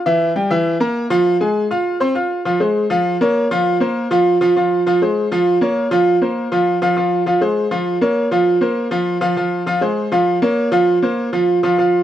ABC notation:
X:1
M:4/4
L:1/8
Q:1/4=200
K:Bbdor
V:1 name="Upright piano"
[=E,=E=e]2 [G,Gg] [E,Ee]2 [B,Bb]2 [F,Ff]- | [F,Ff] [A,Aa]2 [Fff']2 [Ccc'] [Fff']2 | [F,Ff] [A,Ac]2 [F,Ff]2 [B,Bd]2 [F,Ff]- | [F,Ff] [B,Bc]2 [F,Ff]2 [F,Ff] [F,Ff]2 |
[F,Ff] [A,Ac]2 [F,Ff]2 [B,Bd]2 [F,Ff]- | [F,Ff] [B,Bc]2 [F,Ff]2 [F,Ff] [F,Ff]2 | [F,Ff] [A,Ac]2 [F,Ff]2 [B,Bd]2 [F,Ff]- | [F,Ff] [B,Bc]2 [F,Ff]2 [F,Ff] [F,Ff]2 |
[F,Ff] [A,Ac]2 [F,Ff]2 [B,Bd]2 [F,Ff]- | [F,Ff] [B,Bc]2 [F,Ff]2 [F,Ff] [F,Ff]2 |]